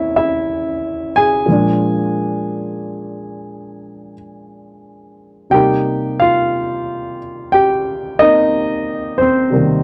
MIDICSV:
0, 0, Header, 1, 2, 480
1, 0, Start_track
1, 0, Tempo, 993377
1, 711, Time_signature, 4, 2, 24, 8
1, 1676, Tempo, 1022147
1, 3116, Tempo, 995025
1, 4707, End_track
2, 0, Start_track
2, 0, Title_t, "Grand piano"
2, 0, Program_c, 0, 0
2, 0, Control_c, 0, 64, 127
2, 0, Note_on_c, 0, 40, 53
2, 0, Note_on_c, 0, 46, 52
2, 0, Note_on_c, 0, 49, 55
2, 0, Note_on_c, 0, 52, 50
2, 0, Note_on_c, 0, 58, 33
2, 0, Note_on_c, 0, 60, 38
2, 0, Note_on_c, 0, 61, 45
2, 0, Note_on_c, 0, 64, 62
2, 0, Note_on_c, 0, 73, 80
2, 0, Note_on_c, 0, 76, 75
2, 68, Note_off_c, 0, 64, 0
2, 72, Note_off_c, 0, 76, 0
2, 79, Note_on_c, 0, 76, 80
2, 86, Note_on_c, 0, 64, 60
2, 542, Note_off_c, 0, 64, 0
2, 560, Note_on_c, 0, 80, 87
2, 568, Note_on_c, 0, 68, 59
2, 572, Note_off_c, 0, 76, 0
2, 697, Note_off_c, 0, 46, 0
2, 704, Note_on_c, 0, 46, 42
2, 708, Note_off_c, 0, 60, 0
2, 710, Note_off_c, 0, 40, 0
2, 710, Note_off_c, 0, 58, 0
2, 712, Note_off_c, 0, 52, 0
2, 714, Note_off_c, 0, 49, 0
2, 714, Note_on_c, 0, 53, 39
2, 716, Note_off_c, 0, 61, 0
2, 717, Control_c, 0, 64, 0
2, 720, Note_off_c, 0, 73, 0
2, 720, Note_on_c, 0, 56, 36
2, 730, Note_on_c, 0, 62, 49
2, 798, Control_c, 0, 64, 127
2, 1984, Note_off_c, 0, 80, 0
2, 1988, Note_off_c, 0, 68, 0
2, 2630, Note_on_c, 0, 48, 41
2, 2636, Note_on_c, 0, 79, 81
2, 2639, Note_off_c, 0, 46, 0
2, 2640, Note_on_c, 0, 55, 38
2, 2642, Note_on_c, 0, 67, 65
2, 2643, Note_off_c, 0, 53, 0
2, 2646, Note_off_c, 0, 56, 0
2, 2647, Control_c, 0, 64, 0
2, 2648, Note_on_c, 0, 58, 38
2, 2651, Note_off_c, 0, 62, 0
2, 2652, Note_on_c, 0, 63, 46
2, 2728, Control_c, 0, 64, 127
2, 2945, Note_off_c, 0, 79, 0
2, 2948, Note_off_c, 0, 67, 0
2, 2957, Note_on_c, 0, 77, 86
2, 2968, Note_on_c, 0, 65, 58
2, 3424, Note_off_c, 0, 77, 0
2, 3429, Note_off_c, 0, 65, 0
2, 3592, Note_on_c, 0, 79, 83
2, 3601, Note_on_c, 0, 67, 69
2, 3667, Note_off_c, 0, 79, 0
2, 3675, Note_off_c, 0, 67, 0
2, 3911, Note_off_c, 0, 58, 0
2, 3915, Note_on_c, 0, 75, 92
2, 3918, Note_on_c, 0, 58, 41
2, 3921, Note_off_c, 0, 63, 0
2, 3927, Note_on_c, 0, 60, 34
2, 3928, Note_on_c, 0, 63, 56
2, 4387, Note_off_c, 0, 63, 0
2, 4391, Note_on_c, 0, 72, 75
2, 4402, Note_off_c, 0, 60, 0
2, 4409, Note_on_c, 0, 60, 62
2, 4414, Note_off_c, 0, 75, 0
2, 4541, Note_off_c, 0, 48, 0
2, 4548, Note_on_c, 0, 48, 49
2, 4549, Note_off_c, 0, 55, 0
2, 4553, Note_off_c, 0, 58, 0
2, 4556, Note_on_c, 0, 55, 44
2, 4562, Note_on_c, 0, 58, 43
2, 4574, Note_on_c, 0, 51, 50
2, 4707, Note_off_c, 0, 48, 0
2, 4707, Note_off_c, 0, 51, 0
2, 4707, Note_off_c, 0, 55, 0
2, 4707, Note_off_c, 0, 58, 0
2, 4707, Note_off_c, 0, 60, 0
2, 4707, Note_off_c, 0, 72, 0
2, 4707, End_track
0, 0, End_of_file